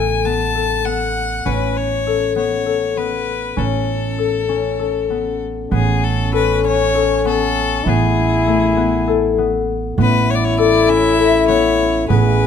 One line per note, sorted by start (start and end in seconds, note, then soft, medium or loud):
0.00 1.41 A1 medium
0.00 0.24 B3 medium
0.00 0.55 A4 medium
0.00 0.27 G#5 medium
0.25 0.85 B3 medium
0.25 0.87 A5 medium
0.55 2.06 A4 medium
0.85 2.35 B3 medium
0.85 1.47 F#5 medium
1.45 3.53 A1 medium
1.45 3.56 C#4 medium
1.45 1.78 B4 medium
1.77 2.36 C#5 medium
2.07 2.66 A4 medium
2.36 2.97 B3 medium
2.36 2.98 C#5 medium
2.66 4.18 A4 medium
2.96 5.10 B3 medium
2.96 3.60 B4 medium
3.57 5.68 A1 medium
3.57 4.48 C#4 medium
3.57 5.42 A4 medium
4.18 4.79 A4 medium
4.49 6.64 C#4 medium
4.79 6.32 A4 medium
5.10 5.71 B3 medium
5.71 7.82 A1 medium
5.71 7.25 B3 medium
5.71 7.86 C#4 medium
5.71 6.05 G#4 medium
6.04 6.34 A4 medium
6.33 6.94 A4 medium
6.33 6.63 B4 medium
6.64 9.54 C#4 medium
6.64 7.23 C#5 medium
6.95 9.07 A4 medium
7.25 7.86 B3 medium
7.25 7.90 A4 medium
7.85 9.93 A1 medium
7.85 8.76 B3 medium
7.85 9.70 E4 loud
7.89 9.08 G#4 medium
8.47 11.80 A3 medium
8.77 9.38 B3 medium
9.08 10.58 A4 medium
9.38 9.98 B3 medium
9.98 12.06 A1 medium
9.98 11.48 B3 medium
9.98 12.06 E4 loud
9.98 10.32 B4 medium
10.30 10.37 C#5 medium
10.35 10.46 D5 medium
10.44 10.59 C#5 medium
10.58 11.18 A4 medium
10.58 10.91 D5 medium
10.88 12.47 C#4 medium
10.88 11.48 E5 loud
11.19 12.47 A4 medium
11.48 12.09 B3 medium
11.48 12.06 C#5 medium
12.09 12.47 A1 medium
12.09 12.47 B3 medium
12.09 12.47 G#4 medium
12.09 12.47 B4 medium